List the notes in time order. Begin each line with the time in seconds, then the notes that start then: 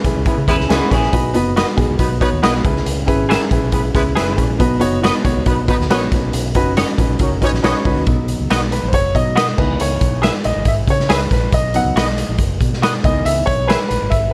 0.04 B1 C#4 E4 G#4 B4, kick, closed hi-hat
0.16 C#2
0.26 G#3 B3 C#4 E4 G#4 B4, kick, closed hi-hat
0.38 C#3
0.48 E2 G#3 B3 C#4 E4 G#4 B4, kick, closed hi-hat
0.59 C#2, snare
0.68 C#2 G#3 B3 C#4 D#4 E4 F#4 G#4 B4, snare, closed hi-hat
0.90 A#1 C#4 E4 G#4 B4, kick, snare, closed hi-hat
1.03 snare
1.12 B1 B2 B3 D#4 F#4 B4, kick, closed hi-hat
1.34 F#1 B3 D#4 F#4 B4, closed hi-hat
1.55 B3 D#4 F#4 B4 D#5, snare, closed hi-hat
1.75 B1 B3 D#4 F#4 G#4, kick, closed hi-hat
1.90 C#2
1.98 B1 F#3 B3 D#4 F#4 B4, kick, closed hi-hat
2.20 F#3 B3 D#4 F#4 B4 C#5, kick, closed hi-hat
2.32 D#2
2.42 B1 G#3 B3 D#4 E4 F#4 B4 D#5, snare, closed hi-hat
2.65 C#2 C#3 C#4 E4 G#4 B4, kick, closed hi-hat
2.76 snare
2.86 C#2, closed hi-hat
3.06 G#1 C#4 E4 G#4 B4, kick, closed hi-hat
3.29 C#4 E4 G#4 A#4 B4 E5, snare, closed hi-hat
3.51 A#1 C#4 E4 G#4 B4, kick, closed hi-hat
3.62 B1
3.72 G#3 B3 C#4 E4 G#4 B4, kick, closed hi-hat
3.94 C#2 G#3 B3 C#4 E4 G#4 B4, kick, closed hi-hat
4.15 F#1 G#3 B3 C#4 E4 G#4 B4 E5, snare, closed hi-hat
4.36 A#1 C#4 E4 G#4 B4, kick, closed hi-hat
4.59 B1 B2 B3 D#4 F#4 B4, kick, closed hi-hat
4.79 F#1 B3 D#4 F#4 C#5, closed hi-hat
5.01 B3 D#4 F#4 B4, snare, closed hi-hat
5.05 D#5
5.24 B1 B3 D#4 F#4 C#5, kick, closed hi-hat
5.37 C#2
5.45 B1 F#3 B3 D#4 F#4 B4, kick, closed hi-hat
5.67 F#3 B3 D#4 F#4 B4, kick, closed hi-hat
5.80 D#2, snare
5.90 A#1 F#3 B3 C#4 D#4 F#4 B4 C#5 D#5, snare, closed hi-hat
6.12 B1 B2 C#4 D#4 F#4 B4, kick, snare, closed hi-hat
6.33 B1, closed hi-hat
6.54 F#1 C#4 D#4 F#4 B4, kick, closed hi-hat
6.76 C#4 D#4 F#4 B4 C#5 D#5, snare, closed hi-hat
6.97 A#1 C#4 D#4 F#4 B4, kick, closed hi-hat
7.09 B1
7.19 C#2 F#3 C#4 D#4 F#4 A#4 C#5, kick, closed hi-hat
7.31 F#1
7.40 F#3 C#4 D#4 F#4 B4 C#5, kick, closed hi-hat
7.53 A#1, snare
7.62 B1 F#3 C#4 D#4 F#4 B4 C#5 D#5, snare, closed hi-hat
7.84 C#2 C#4 D#4 F#4 B4, kick, open hi-hat
7.96 D#2
8.06 B1 F#3 B3 D#4, kick, closed hi-hat
8.28 closed hi-hat
8.40 C#2
8.50 B1 F#4 B4 D#5, snare, closed hi-hat
8.72 B4, closed hi-hat
8.83 A#1
8.88 C5
8.93 F#1 C#5, kick, closed hi-hat
9.15 B2 F#3 B3 D#4 D#5, kick, closed hi-hat
9.36 F#4 B4 D#5, snare, closed hi-hat
9.58 C#2 E3 B3 D#4 B4, kick, crash
9.80 C#2 C#5, closed hi-hat
10.01 B1, kick, closed hi-hat
10.22 G#4 B4 E5, snare, closed hi-hat
10.44 A#1 D#5, closed hi-hat
10.56 G#1
10.65 G#1 E5, kick, closed hi-hat
10.88 C#3 C#5, kick, closed hi-hat
11.00 snare
11.09 C#2 G#4 B4 E5, snare, closed hi-hat
11.31 A#1 B4, kick, snare, closed hi-hat
11.52 B1 D#5, kick, closed hi-hat
11.74 F#3 B3 D#4 F#5, closed hi-hat
11.85 C#2
11.96 B1 F#4 B4 D#5, snare, closed hi-hat
12.18 closed hi-hat
12.29 A#1
12.38 F#1, kick, closed hi-hat
12.61 B2, kick, closed hi-hat
12.73 snare
12.82 F#4 B4 D#5, snare, closed hi-hat
13.04 C#2 E3 B3 D#4 D#5, kick, closed hi-hat
13.25 C#2 E5, closed hi-hat
13.46 B1 C#5, kick, closed hi-hat
13.67 G#4 B4 E5, snare, closed hi-hat
13.88 A#1 B4, closed hi-hat
14.02 G#1
14.10 G#1 E5, kick, closed hi-hat